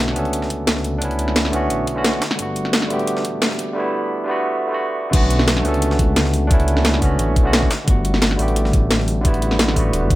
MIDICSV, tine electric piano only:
0, 0, Header, 1, 2, 480
1, 0, Start_track
1, 0, Key_signature, 2, "minor"
1, 0, Tempo, 342857
1, 1427, Time_signature, 4, 2, 24, 8
1, 14216, End_track
2, 0, Start_track
2, 0, Title_t, "Tine electric piano"
2, 0, Program_c, 0, 4
2, 0, Control_c, 0, 64, 127
2, 0, Note_on_c, 0, 50, 81
2, 0, Note_on_c, 0, 57, 75
2, 0, Note_on_c, 0, 59, 74
2, 0, Note_on_c, 0, 61, 72
2, 0, Note_on_c, 0, 66, 87
2, 175, Note_off_c, 0, 50, 0
2, 175, Note_on_c, 0, 62, 80
2, 181, Note_off_c, 0, 57, 0
2, 198, Note_off_c, 0, 59, 0
2, 198, Note_on_c, 0, 57, 73
2, 209, Note_off_c, 0, 61, 0
2, 221, Note_off_c, 0, 66, 0
2, 221, Note_on_c, 0, 59, 74
2, 244, Note_on_c, 0, 61, 71
2, 268, Note_on_c, 0, 69, 85
2, 1359, Note_off_c, 0, 62, 0
2, 1376, Note_on_c, 0, 62, 83
2, 1381, Note_off_c, 0, 57, 0
2, 1397, Note_off_c, 0, 59, 0
2, 1398, Note_on_c, 0, 57, 78
2, 1408, Note_off_c, 0, 61, 0
2, 1420, Note_off_c, 0, 69, 0
2, 1421, Note_on_c, 0, 59, 77
2, 1446, Note_on_c, 0, 61, 78
2, 1467, Note_on_c, 0, 64, 94
2, 2094, Note_off_c, 0, 62, 0
2, 2099, Note_on_c, 0, 50, 85
2, 2105, Note_off_c, 0, 57, 0
2, 2116, Note_off_c, 0, 59, 0
2, 2123, Note_on_c, 0, 57, 77
2, 2129, Note_off_c, 0, 61, 0
2, 2140, Note_off_c, 0, 64, 0
2, 2145, Note_on_c, 0, 59, 76
2, 2167, Note_on_c, 0, 61, 78
2, 2192, Note_on_c, 0, 66, 95
2, 2699, Note_off_c, 0, 50, 0
2, 2710, Note_off_c, 0, 57, 0
2, 2721, Note_off_c, 0, 59, 0
2, 2725, Note_on_c, 0, 50, 86
2, 2733, Note_off_c, 0, 61, 0
2, 2737, Note_on_c, 0, 57, 80
2, 2745, Note_off_c, 0, 66, 0
2, 2748, Note_on_c, 0, 59, 78
2, 2759, Note_on_c, 0, 61, 81
2, 2771, Note_on_c, 0, 66, 93
2, 3079, Note_off_c, 0, 50, 0
2, 3085, Note_off_c, 0, 57, 0
2, 3091, Note_off_c, 0, 59, 0
2, 3096, Note_off_c, 0, 61, 0
2, 3102, Note_off_c, 0, 66, 0
2, 3122, Control_c, 0, 64, 0
2, 3299, Note_on_c, 0, 50, 85
2, 3322, Note_on_c, 0, 55, 78
2, 3345, Note_on_c, 0, 57, 77
2, 3367, Note_on_c, 0, 59, 79
2, 3374, Control_c, 0, 64, 127
2, 3393, Note_on_c, 0, 66, 96
2, 3999, Note_off_c, 0, 50, 0
2, 4015, Note_on_c, 0, 50, 82
2, 4022, Note_off_c, 0, 55, 0
2, 4039, Note_off_c, 0, 57, 0
2, 4039, Note_on_c, 0, 55, 73
2, 4050, Note_off_c, 0, 59, 0
2, 4062, Note_off_c, 0, 66, 0
2, 4062, Note_on_c, 0, 57, 72
2, 4086, Note_on_c, 0, 59, 77
2, 4110, Note_on_c, 0, 67, 93
2, 5201, Note_off_c, 0, 50, 0
2, 5218, Note_on_c, 0, 50, 90
2, 5225, Note_off_c, 0, 55, 0
2, 5237, Note_off_c, 0, 57, 0
2, 5241, Note_on_c, 0, 55, 82
2, 5249, Note_off_c, 0, 59, 0
2, 5261, Note_off_c, 0, 67, 0
2, 5266, Note_on_c, 0, 57, 82
2, 5288, Note_on_c, 0, 59, 79
2, 5311, Note_on_c, 0, 64, 99
2, 5923, Note_off_c, 0, 50, 0
2, 5940, Note_on_c, 0, 50, 84
2, 5946, Note_off_c, 0, 55, 0
2, 5959, Note_off_c, 0, 57, 0
2, 5961, Note_on_c, 0, 55, 78
2, 5970, Note_off_c, 0, 59, 0
2, 5981, Note_off_c, 0, 64, 0
2, 5985, Note_on_c, 0, 57, 82
2, 6008, Note_on_c, 0, 59, 84
2, 6033, Note_on_c, 0, 66, 95
2, 6526, Note_off_c, 0, 50, 0
2, 6543, Note_on_c, 0, 50, 79
2, 6549, Note_off_c, 0, 55, 0
2, 6562, Note_off_c, 0, 57, 0
2, 6566, Note_on_c, 0, 55, 70
2, 6573, Note_off_c, 0, 59, 0
2, 6585, Note_off_c, 0, 66, 0
2, 6590, Note_on_c, 0, 57, 73
2, 6615, Note_on_c, 0, 59, 72
2, 6638, Note_on_c, 0, 66, 85
2, 7121, Note_off_c, 0, 50, 0
2, 7138, Note_on_c, 0, 50, 85
2, 7145, Note_off_c, 0, 57, 0
2, 7146, Note_off_c, 0, 55, 0
2, 7162, Note_on_c, 0, 57, 78
2, 7168, Note_off_c, 0, 59, 0
2, 7182, Note_off_c, 0, 66, 0
2, 7185, Note_on_c, 0, 59, 80
2, 7202, Control_c, 0, 64, 0
2, 7210, Note_on_c, 0, 61, 78
2, 7233, Note_on_c, 0, 66, 97
2, 7443, Control_c, 0, 64, 127
2, 7855, Note_off_c, 0, 50, 0
2, 7859, Note_on_c, 0, 62, 82
2, 7867, Note_off_c, 0, 57, 0
2, 7878, Note_off_c, 0, 59, 0
2, 7882, Note_on_c, 0, 57, 77
2, 7891, Note_off_c, 0, 61, 0
2, 7902, Note_off_c, 0, 66, 0
2, 7905, Note_on_c, 0, 59, 75
2, 7929, Note_on_c, 0, 61, 74
2, 7952, Note_on_c, 0, 69, 88
2, 9043, Note_off_c, 0, 62, 0
2, 9060, Note_on_c, 0, 62, 88
2, 9067, Note_off_c, 0, 57, 0
2, 9079, Note_off_c, 0, 59, 0
2, 9081, Note_on_c, 0, 57, 81
2, 9090, Note_off_c, 0, 61, 0
2, 9102, Note_off_c, 0, 69, 0
2, 9105, Note_on_c, 0, 59, 81
2, 9130, Note_on_c, 0, 61, 80
2, 9152, Note_on_c, 0, 64, 96
2, 9776, Note_off_c, 0, 62, 0
2, 9778, Note_on_c, 0, 50, 84
2, 9787, Note_off_c, 0, 57, 0
2, 9799, Note_off_c, 0, 59, 0
2, 9802, Note_on_c, 0, 57, 80
2, 9811, Note_off_c, 0, 61, 0
2, 9822, Note_off_c, 0, 64, 0
2, 9825, Note_on_c, 0, 59, 81
2, 9848, Note_on_c, 0, 61, 82
2, 9872, Note_on_c, 0, 66, 94
2, 10378, Note_off_c, 0, 50, 0
2, 10390, Note_off_c, 0, 57, 0
2, 10401, Note_off_c, 0, 59, 0
2, 10408, Note_on_c, 0, 50, 89
2, 10413, Note_off_c, 0, 61, 0
2, 10420, Note_on_c, 0, 57, 82
2, 10425, Note_off_c, 0, 66, 0
2, 10432, Note_on_c, 0, 59, 78
2, 10443, Note_on_c, 0, 61, 78
2, 10456, Note_on_c, 0, 66, 96
2, 10761, Note_off_c, 0, 50, 0
2, 10767, Note_off_c, 0, 57, 0
2, 10773, Note_off_c, 0, 59, 0
2, 10778, Note_off_c, 0, 61, 0
2, 10785, Note_off_c, 0, 66, 0
2, 10806, Control_c, 0, 64, 0
2, 10979, Note_on_c, 0, 50, 84
2, 11001, Note_on_c, 0, 55, 80
2, 11023, Note_on_c, 0, 57, 80
2, 11035, Control_c, 0, 64, 127
2, 11046, Note_on_c, 0, 59, 80
2, 11070, Note_on_c, 0, 66, 93
2, 11683, Note_off_c, 0, 50, 0
2, 11700, Note_on_c, 0, 50, 82
2, 11707, Note_off_c, 0, 55, 0
2, 11718, Note_off_c, 0, 57, 0
2, 11724, Note_on_c, 0, 55, 78
2, 11729, Note_off_c, 0, 59, 0
2, 11741, Note_off_c, 0, 66, 0
2, 11746, Note_on_c, 0, 57, 79
2, 11769, Note_on_c, 0, 59, 76
2, 11793, Note_on_c, 0, 67, 89
2, 12880, Note_off_c, 0, 50, 0
2, 12897, Note_on_c, 0, 50, 88
2, 12903, Note_off_c, 0, 55, 0
2, 12919, Note_off_c, 0, 57, 0
2, 12920, Note_on_c, 0, 55, 81
2, 12930, Note_off_c, 0, 59, 0
2, 12942, Note_off_c, 0, 67, 0
2, 12945, Note_on_c, 0, 57, 81
2, 12968, Note_on_c, 0, 59, 84
2, 12990, Note_on_c, 0, 64, 99
2, 13601, Note_off_c, 0, 50, 0
2, 13618, Note_on_c, 0, 50, 84
2, 13626, Note_off_c, 0, 55, 0
2, 13638, Note_off_c, 0, 57, 0
2, 13644, Note_on_c, 0, 55, 78
2, 13650, Note_off_c, 0, 59, 0
2, 13661, Note_off_c, 0, 64, 0
2, 13665, Note_on_c, 0, 57, 79
2, 13690, Note_on_c, 0, 59, 80
2, 13711, Note_on_c, 0, 66, 95
2, 14210, Note_off_c, 0, 50, 0
2, 14216, Note_off_c, 0, 55, 0
2, 14216, Note_off_c, 0, 57, 0
2, 14216, Note_off_c, 0, 59, 0
2, 14216, Note_off_c, 0, 66, 0
2, 14216, End_track
0, 0, End_of_file